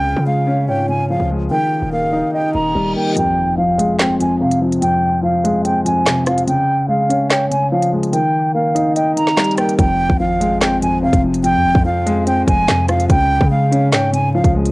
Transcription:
Already playing: 808-style bass C#2, grand piano C#3, ambient pad C#4 F4 G#4 F5, flute G5
0.16 808-style bass C#3
0.26 grand piano G#3, flute F5
0.47 grand piano C#4
0.68 808-style bass G#2, grand piano C#5, flute G5
0.89 grand piano C#3, flute G#5
1.10 grand piano F3, flute F5
1.20 808-style bass C#2
1.31 grand piano G#3
1.51 grand piano D#3, ambient pad A#3 D#4 G4 D#5, flute G5
1.82 808-style bass D#1
1.92 grand piano A#3, flute F5
2.03 808-style bass C#1
2.13 808-style bass D#1, grand piano D#4
2.34 grand piano D#5, flute G5, reverse cymbal
2.54 808-style bass D#1, grand piano D#3, flute A#5
2.75 808-style bass D#1, grand piano G3
2.96 grand piano A#3, flute G5
3.16 grand piano F2, flute G5, closed hi-hat, impact
3.58 grand piano F3, flute F5
3.78 grand piano G#3, closed hi-hat
3.99 grand piano C4, flute G5, snare, clap, closed hi-hat
4.20 grand piano F2, flute G#5, closed hi-hat
4.41 grand piano C3, flute F5
4.51 closed hi-hat
4.62 grand piano F3
4.72 closed hi-hat
4.82 grand piano F2, flute G5, closed hi-hat
5.23 grand piano F3, flute F5
5.44 grand piano G#3, closed hi-hat
5.65 grand piano C4, flute G5, closed hi-hat
5.85 grand piano F2, flute G#5, closed hi-hat
6.06 grand piano C3, snare, clap, closed hi-hat
6.26 grand piano F3, flute F5, cross-stick, closed hi-hat
6.38 closed hi-hat
6.47 grand piano C#3, flute G5, closed hi-hat
6.88 grand piano G#3, flute F5
7.09 grand piano C#4, closed hi-hat
7.30 grand piano C#5, flute G5, snare, clap, closed hi-hat
7.51 grand piano C#3, flute G#5, closed hi-hat
7.72 grand piano F3, flute F5
7.82 closed hi-hat
7.92 grand piano G#3
8.03 closed hi-hat
8.13 grand piano D#3, flute G5, closed hi-hat
8.55 grand piano A#3, flute F5
8.75 grand piano D#4, closed hi-hat
8.96 grand piano D#5, flute G5, closed hi-hat
9.16 grand piano D#3, flute A#5, closed hi-hat
9.27 snare
9.37 grand piano G3, snare, clap, closed hi-hat
9.44 closed hi-hat
9.51 closed hi-hat
9.57 grand piano A#3, flute G5, cross-stick, closed hi-hat
9.69 closed hi-hat
9.78 808-style bass F1, grand piano F2, flute G5, kick, closed hi-hat
10.10 808-style bass G#1, kick
10.20 grand piano F3, flute F5
10.40 grand piano G#3, closed hi-hat
10.61 grand piano C4, flute G5, snare, clap, closed hi-hat
10.82 grand piano F2, flute G#5, closed hi-hat
11.03 grand piano C3, flute F5
11.13 808-style bass F1, kick, closed hi-hat
11.24 grand piano F3
11.34 closed hi-hat
11.44 grand piano F2, flute G5, closed hi-hat
11.54 808-style bass F2
11.65 808-style bass F1
11.75 808-style bass F2, kick
11.85 grand piano F3, flute F5
12.06 grand piano G#3, closed hi-hat
12.27 grand piano C4, flute G5, closed hi-hat
12.47 808-style bass F1, grand piano F2, flute G#5, kick, closed hi-hat
12.68 808-style bass F2, grand piano C3, snare, clap, closed hi-hat
12.88 grand piano F3, flute F5, cross-stick, closed hi-hat
13.00 closed hi-hat
13.09 808-style bass C#2, grand piano C#3, flute G5, kick, closed hi-hat
13.41 808-style bass C#3, kick
13.50 grand piano G#3, flute F5
13.71 grand piano C#4, closed hi-hat
13.92 808-style bass G#2, grand piano C#5, flute G5, snare, clap, closed hi-hat
14.13 grand piano C#3, flute G#5, closed hi-hat
14.34 grand piano F3, flute F5
14.44 808-style bass C#2, kick, closed hi-hat
14.55 grand piano G#3
14.65 closed hi-hat

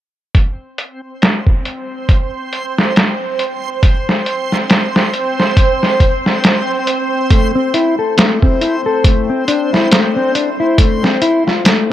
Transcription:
0.34 synth texture C4 C5, kick, closed hi-hat
0.78 closed hi-hat
1.22 snare, closed hi-hat
1.47 kick
1.65 closed hi-hat
2.09 kick, closed hi-hat
2.53 closed hi-hat
2.78 snare
2.96 snare, closed hi-hat
3.39 closed hi-hat
3.83 kick, closed hi-hat
4.09 snare
4.26 closed hi-hat
4.52 snare
4.70 snare, closed hi-hat
4.96 snare
5.14 closed hi-hat
5.40 snare
5.57 kick, closed hi-hat
5.83 snare
6.00 kick, closed hi-hat
6.26 snare
6.44 snare, closed hi-hat
6.87 closed hi-hat
7.30 clean electric guitar A3, kick, closed hi-hat
7.55 clean electric guitar C4
7.74 clean electric guitar E4, closed hi-hat
7.99 clean electric guitar A4
8.17 clean electric guitar A3, snare, closed hi-hat
8.42 clean electric guitar C4, kick
8.61 clean electric guitar E4, closed hi-hat
8.86 clean electric guitar A4
9.04 clean electric guitar A3, kick, closed hi-hat
9.30 clean electric guitar C4
9.48 clean electric guitar D4, closed hi-hat
9.73 clean electric guitar E4, snare
9.92 clean electric guitar A3, snare, closed hi-hat
10.16 clean electric guitar C4
10.35 clean electric guitar D4, closed hi-hat
10.60 clean electric guitar E4
10.78 clean electric guitar A3, kick, closed hi-hat
11.03 clean electric guitar C4, snare
11.22 clean electric guitar E4, closed hi-hat
11.47 clean electric guitar F4, snare
11.65 clean electric guitar A3, snare, closed hi-hat

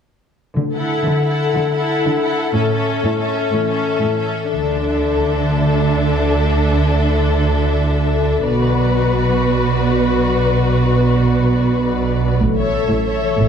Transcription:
0.56 harp D3, cello section D3, timpani D3
0.73 harp E4, viola section E4, violin section A4 F#5
0.88 harp A4
1.06 cello section D3, harp F#5
1.22 viola section E4, violin section A4 F#5, harp E5
1.39 harp A4
1.56 cello section D3, harp A3
1.71 harp E4, viola section E4, violin section A4 F#5
1.88 harp A4
2.05 cello section D3, harp F#5
2.21 viola section E4, violin section A4 F#5, harp E5
2.37 harp A4
2.53 harp A2, cello section A2, viola section C#4, violin section A4 E5
2.69 viola section C#4, harp C#4, violin section A4 E5
2.86 harp A4
3.03 cello section A2, harp E5
3.19 viola section C#4, violin section A4 E5, harp C#5
3.36 harp A4
3.52 cello section A2, harp E3
3.66 viola section C#4, harp C#4, violin section A4 E5
3.85 harp A4
4.01 cello section A2, harp E5
4.17 viola section C#4, violin section A4 E5, harp C#5
4.35 harp A4
4.51 double bass section D2, harp D3, cello section D3, viola section D4, violin section A4 E5
4.68 harp A3
4.86 harp E4
5.01 harp A4
5.18 harp E4
5.35 harp A3
5.51 harp D3
5.68 harp D4
5.83 harp E4
6.01 harp A4
6.18 harp E4
6.35 harp A3
6.51 harp D3
6.67 harp D4
6.83 harp E4
7.00 harp A4
7.16 harp E4
7.32 harp A3
7.49 harp D3
7.66 harp D4
7.81 harp E4
7.97 harp A4
8.14 harp E4
8.31 harp A3
8.46 double bass section B1, harp B2, cello section B2, viola section F#4, violin section B4 D5
8.63 harp F#3
8.79 harp F#4
8.95 harp B4
9.11 harp F#4
9.29 harp F#3
9.46 harp B2
9.63 harp D4
9.79 harp F#4
10.11 harp F#4
10.28 harp F#3
10.44 harp B2
10.61 harp D4
10.77 harp F#4
10.95 harp B4
11.10 harp F#4
11.27 harp F#3
11.44 harp B2
11.76 harp F#4
11.92 harp B4
12.09 harp F#4
12.25 harp F#3
12.42 double bass section A1, cello section A2, harp A2
12.57 harp E3, viola section A4, violin section C#5 E5
12.74 harp A4
12.91 double bass section A1, cello section A2, harp C#5
13.06 harp A4, viola section A4, violin section C#5 E5
13.23 harp E3
13.40 double bass section A1, cello section A2, harp A2

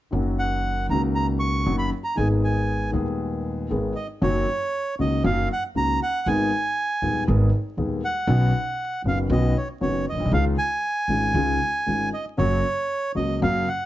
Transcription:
0.11 upright bass F#1, grand piano F#2 D#3 F#3 A#3 C#4 F#4
0.39 bandoneon F#5
0.89 upright bass C#2, grand piano C#2 C#3 D#3 A#3 C#4 F#4, bandoneon A#5
1.15 bandoneon A#5
1.40 bandoneon C#6
1.66 upright bass F#1, grand piano F#2 D#3 F#3 A#3 C#4 F#4
1.78 bandoneon B5
2.04 bandoneon A#5
2.15 grand piano G#1 G#2 D#3 G#3 B3, upright bass G#1, bandoneon G#5
2.20 grand piano G#4
2.44 bandoneon G#5
2.92 grand piano D#1 D#2 D#3 G#3 B3 G#4, upright bass D#2
3.70 upright bass G#1, grand piano G#1 G#2 D#3 G#3 B3 G#4
3.96 bandoneon D#5
4.22 upright bass F#1, grand piano F#2 D#3 F#3 A#3 C#4 F#4, bandoneon C#5
4.99 grand piano C#2 C#3 D#3 A#3 C#4 F#4, upright bass C#2, bandoneon D#5
5.24 upright bass F#1, grand piano F#2 D#3 F#3 A#3 C#4 F#4, bandoneon F5
5.53 bandoneon F#5
5.75 grand piano C#2 C#3 D#3 A#3 C#4 F#4, upright bass C#2, bandoneon A#5
6.03 bandoneon F#5
6.26 upright bass G#1, grand piano G#1 G#2 D#3 G#3 B3 G#4, bandoneon G#5
7.02 grand piano D#1 D#2 D#3 G#3 B3 G#4, upright bass D#2
7.27 grand piano G#1 G#2 D#3 G#3 B3 G#4, upright bass G#1
7.77 grand piano D#1 D#2 D#3 G#3 B3 G#4, upright bass D#2
8.05 bandoneon F#5
8.27 grand piano B1 B2 D#3 B3 C#4 F#4, upright bass B1
9.04 upright bass F#1, grand piano F#1 F#2 D#3 B3 C#4 F#4, bandoneon F5
9.30 upright bass B1, grand piano B1 B2 D#3 B3 C#4 F#4, bandoneon D#5
9.57 bandoneon C#5
9.80 grand piano F#1 F#2 D#3 B3 C#4 F#4, upright bass F#1, bandoneon C#5
10.09 upright bass A#1, bandoneon D#5
10.14 grand piano A#1
10.19 grand piano B1, upright bass B1
10.24 grand piano C2, upright bass C2
10.32 upright bass C#2, grand piano C#2 C#3 D#3 G#3 C#4 F4, bandoneon F5
10.58 bandoneon G#5
11.08 upright bass G#1, grand piano G#1 G#2 D#3 G#3 C#4 F4
11.34 upright bass C#2, grand piano C#2 C#3 D#3 G#3 C#4 F4
11.86 grand piano G#1 G#2 D#3 G#3 C#4 F4, upright bass G#1
12.14 bandoneon D#5
12.37 upright bass F#1, grand piano F#2 C#3 F#3 A#3 F#4, bandoneon C#5
13.15 grand piano C#2 C#3 F#3 A#3 F#4, upright bass C#2, bandoneon D#5
13.42 upright bass F#1, grand piano F#2 C#3 F#3 A#3 F#4, bandoneon F5
13.68 bandoneon F#5

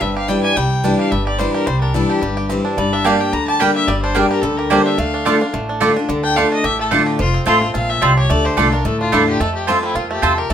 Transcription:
Already playing: five-string banjo C4 D4 G4
0.01 upright bass G1, steel-string acoustic guitar G2, five-string banjo G3, fiddle E5
0.16 five-string banjo G4, fiddle F5
0.28 steel-string acoustic guitar E3 G3 D4 E4, five-string banjo G3, fiddle G5
0.43 five-string banjo G4, fiddle G#5
0.56 upright bass C2, steel-string acoustic guitar C3, five-string banjo G3, fiddle G5
0.84 steel-string acoustic guitar E3 G3 D4 E4, five-string banjo D4
0.99 five-string banjo G4, fiddle F5
1.11 upright bass G1, steel-string acoustic guitar G2, five-string banjo G3, fiddle E5
1.27 five-string banjo G4, fiddle D5
1.39 steel-string acoustic guitar E3 G3 D4 E4, five-string banjo G3, fiddle C5
1.54 five-string banjo G4, fiddle A#4
1.66 upright bass C2, steel-string acoustic guitar C3, five-string banjo G3, fiddle C5
1.81 five-string banjo D4, fiddle A#4
1.94 steel-string acoustic guitar E3 G3 D4 E4, five-string banjo G3, fiddle A4
2.10 fiddle G4, five-string banjo G4
2.22 upright bass G1, steel-string acoustic guitar G2, five-string banjo G3
2.37 five-string banjo G4
2.49 steel-string acoustic guitar E3 G3 D4 E4, five-string banjo C4
2.65 five-string banjo D4
2.77 upright bass G1, steel-string acoustic guitar G2, five-string banjo G3, fiddle D5
2.93 five-string banjo D4, fiddle E5
3.04 steel-string acoustic guitar G3 A#3 D4 G4, mandolin A#3 G4 D5 G5, five-string banjo D4, fiddle F5
3.20 five-string banjo G4, fiddle G5
3.33 upright bass D2, steel-string acoustic guitar D3, five-string banjo G3, fiddle A#5
3.48 five-string banjo G4, fiddle A5
3.59 steel-string acoustic guitar G3 A#3 D4 G4, five-string banjo G3, mandolin A#3 G4 D5 G5, fiddle G5
3.76 five-string banjo G4, fiddle E5
3.87 upright bass G1, steel-string acoustic guitar G2, five-string banjo G3, fiddle D5
4.03 five-string banjo D4, fiddle C5
4.15 steel-string acoustic guitar G3 A#3 D4 G4, five-string banjo G3, mandolin A#3 G4 D5 G5, fiddle G#4
4.30 five-string banjo G4, fiddle A#4
4.42 upright bass D2, steel-string acoustic guitar D3, five-string banjo G3, fiddle A4
4.57 five-string banjo G4, fiddle A#4
4.70 steel-string acoustic guitar G3 A#3 D4 G4, mandolin A#3 G4 D5 G5, five-string banjo D4, fiddle C5
4.86 five-string banjo D4, fiddle E5
4.98 upright bass D2, steel-string acoustic guitar D3, five-string banjo A3, fiddle F5
5.14 five-string banjo D4
5.25 steel-string acoustic guitar D3 A3 D4 F4, five-string banjo D3, mandolin A3 F4 D5 A5
5.41 five-string banjo D4, steel-string acoustic guitar D4 F4
5.54 upright bass A1, steel-string acoustic guitar A2, five-string banjo A3
5.69 five-string banjo D4
5.80 steel-string acoustic guitar D3 A3 D4 F4, mandolin A3 F4 D5 A5, five-string banjo G4
5.96 five-string banjo D4, steel-string acoustic guitar D4 F4
6.09 upright bass D2, five-string banjo D3, steel-string acoustic guitar D3
6.24 five-string banjo D4, fiddle G5
6.36 steel-string acoustic guitar D3 A3 D4 F4, five-string banjo A3, mandolin A3 F4 D5 A5, fiddle F5
6.52 five-string banjo D4, fiddle D#5
6.64 upright bass A1, steel-string acoustic guitar A2, five-string banjo G4, fiddle E5
6.79 five-string banjo A3, fiddle A4
6.91 steel-string acoustic guitar D3 A3 D4 F4, mandolin A3 F4 D5 A5, five-string banjo D4
7.06 five-string banjo G4
7.19 upright bass F1, steel-string acoustic guitar F2, five-string banjo F3, fiddle F4
7.34 five-string banjo C4
7.46 upright bass A1, steel-string acoustic guitar F3 A3 C4 F4, five-string banjo A3, mandolin C4 F4 C5 A5, fiddle F4
7.61 five-string banjo C4, steel-string acoustic guitar C4 F4
7.74 upright bass A#1, steel-string acoustic guitar A#2, five-string banjo F4, fiddle F5
7.90 five-string banjo A3, fiddle E5
8.02 upright bass C2, steel-string acoustic guitar C3, mandolin C4 F4 C5 A5, five-string banjo F4, fiddle D5
8.17 five-string banjo G4, fiddle C#5
8.30 upright bass D2, steel-string acoustic guitar D3, five-string banjo A3, fiddle D5
8.45 five-string banjo G4, fiddle C5
8.57 upright bass C2, steel-string acoustic guitar D3 A3 D4 F4, mandolin A3 F4 D5 A5, five-string banjo D4, fiddle A4
8.72 five-string banjo D4, steel-string acoustic guitar F4, fiddle A#4
8.85 upright bass D2, steel-string acoustic guitar A2, five-string banjo A3, fiddle A4
9.00 five-string banjo D4, fiddle F4
9.12 upright bass E2, steel-string acoustic guitar D3 A3 D4 F4, mandolin A3 F4 D5 A5, five-string banjo A3, fiddle E4
9.28 five-string banjo D3, fiddle G4
9.40 upright bass F2, steel-string acoustic guitar F2, five-string banjo A3, fiddle A4
9.55 fiddle G4
9.67 steel-string acoustic guitar F3 A3 C4 F4, mandolin C4 F4 C5 A5, fiddle F4, five-string banjo G4
9.83 five-string banjo C4, fiddle E4
9.95 upright bass F2, steel-string acoustic guitar A#2, five-string banjo F4, fiddle F4
10.11 five-string banjo A3, fiddle G4
10.22 upright bass E2, steel-string acoustic guitar C3, mandolin C4 F4 C5 A5, five-string banjo F4, fiddle A4
10.38 five-string banjo G4, fiddle A#4
10.50 upright bass D2, steel-string acoustic guitar D3, five-string banjo A3

